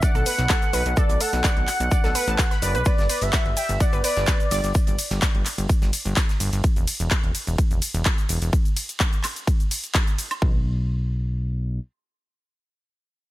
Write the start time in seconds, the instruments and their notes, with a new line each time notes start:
0.02 synth pluck D5 D6, analog synth lead F#5, kick, closed hi-hat, shaker
0.15 analog synth bass B1, synth pluck A4 A5, closed hi-hat, shaker
0.26 synth pluck B4 B5, analog synth lead F#5, open hi-hat, shaker
0.37 analog synth bass B1, snare, closed hi-hat, shaker
0.49 synth pluck A4 A5, kick, snare, clap, closed hi-hat, shaker
0.62 closed hi-hat, shaker
0.73 analog synth bass B1, synth pluck B4 B5, open hi-hat, shaker
0.86 analog synth bass B1, closed hi-hat, shaker
0.97 synth pluck A4 A5, analog synth lead D5, kick, closed hi-hat, shaker
1.09 analog synth bass B1, closed hi-hat, shaker
1.20 synth pluck A4 A5, analog synth lead F#5, open hi-hat, shaker
1.33 analog synth bass B1, snare, closed hi-hat, shaker
1.44 synth pluck D5 D6, kick, snare, clap, closed hi-hat, shaker
1.57 analog synth bass B1, closed hi-hat
1.67 synth pluck F#5 F#6, clap, open hi-hat, shaker
1.80 analog synth bass B1, closed hi-hat, shaker
1.91 synth pluck D5 D6, kick, closed hi-hat, shaker
2.04 analog synth bass B1, synth pluck A4 A5, snare, closed hi-hat, shaker
2.15 synth pluck B4 B5, open hi-hat, shaker
2.28 analog synth bass A1, synth pluck A5 A6, shaker
2.38 kick, snare, clap, closed hi-hat, shaker
2.51 synth pluck B5, snare, closed hi-hat, shaker
2.62 analog synth bass F#1, analog synth lead B4, synth pluck D5 D6, open hi-hat, shaker
2.75 analog synth bass B1, synth pluck B4 B5, closed hi-hat, shaker
2.85 synth pluck B4 B5, analog synth lead D5, kick, closed hi-hat, ride, shaker
2.98 analog synth bass G1, snare, closed hi-hat, shaker
3.09 synth pluck B4 B5, open hi-hat, ride, shaker
3.21 analog synth bass G1, analog synth lead E5, closed hi-hat, shaker
3.33 synth pluck F#5 F#6, kick, snare, clap, closed hi-hat, ride, shaker
3.46 analog synth bass G1, closed hi-hat
3.57 analog synth lead E5, synth pluck G5 G6, open hi-hat, ride, shaker
3.69 analog synth bass G1, closed hi-hat, shaker
3.80 analog synth lead D5, synth pluck F#5 F#6, kick, closed hi-hat, ride, shaker
3.93 analog synth bass G1, synth pluck B4 B5, closed hi-hat, shaker
4.04 synth pluck B4 B5, analog synth lead D5, open hi-hat, ride, shaker
4.17 analog synth bass G1, snare, closed hi-hat, shaker
4.27 synth pluck B4 B5, kick, snare, clap, closed hi-hat, ride, shaker
4.40 closed hi-hat, shaker
4.51 analog synth bass G1, synth pluck D5 D6, open hi-hat, ride, shaker
4.64 analog synth bass G1, closed hi-hat, shaker
4.75 kick, closed hi-hat, ride, shaker
4.87 analog synth bass G1, closed hi-hat, shaker
4.99 open hi-hat, ride, shaker
5.11 analog synth bass G1, snare, closed hi-hat, shaker
5.22 kick, snare, clap, closed hi-hat, ride, shaker
5.35 analog synth bass G1, closed hi-hat
5.46 clap, open hi-hat, ride, shaker
5.58 analog synth bass G1, closed hi-hat, shaker
5.69 kick, closed hi-hat, ride, shaker
5.82 analog synth bass G1, snare, closed hi-hat, shaker
5.93 open hi-hat, ride, shaker
6.05 analog synth bass G1, closed hi-hat, shaker
6.16 kick, snare, clap, closed hi-hat, ride, shaker
6.29 snare, closed hi-hat, shaker
6.40 analog synth bass G1, open hi-hat, ride, shaker
6.53 analog synth bass G1, closed hi-hat, shaker
6.64 kick, closed hi-hat, ride, shaker
6.76 analog synth bass E1, closed hi-hat, shaker
6.87 open hi-hat, ride, shaker
7.00 analog synth bass E1, closed hi-hat, shaker
7.11 kick, clap, closed hi-hat, ride, shaker
7.24 analog synth bass E1, closed hi-hat
7.35 open hi-hat, ride, shaker
7.47 analog synth bass E1, closed hi-hat, shaker
7.58 kick, closed hi-hat, ride, shaker
7.71 analog synth bass E1, closed hi-hat, shaker
7.82 open hi-hat, ride, shaker
7.94 analog synth bass E1, closed hi-hat, shaker
8.05 kick, clap, closed hi-hat, ride, shaker
8.18 closed hi-hat, shaker
8.29 analog synth bass E1, open hi-hat, ride, shaker
8.42 analog synth bass E1, closed hi-hat, shaker
8.53 kick, closed hi-hat, ride, shaker
8.65 closed hi-hat, shaker
8.77 open hi-hat, ride, shaker
8.89 closed hi-hat, shaker
9.00 kick, clap, closed hi-hat, ride, shaker
9.13 closed hi-hat, shaker
9.23 clap, open hi-hat, ride, high woodblock, shaker
9.36 closed hi-hat, shaker
9.47 kick, closed hi-hat, ride, shaker
9.60 closed hi-hat, shaker
9.71 open hi-hat, ride, shaker
9.84 closed hi-hat, shaker
9.95 kick, clap, closed hi-hat, ride, shaker
10.07 closed hi-hat, shaker
10.18 open hi-hat, ride, shaker
10.31 closed hi-hat, high woodblock, shaker
10.42 analog synth bass B1, kick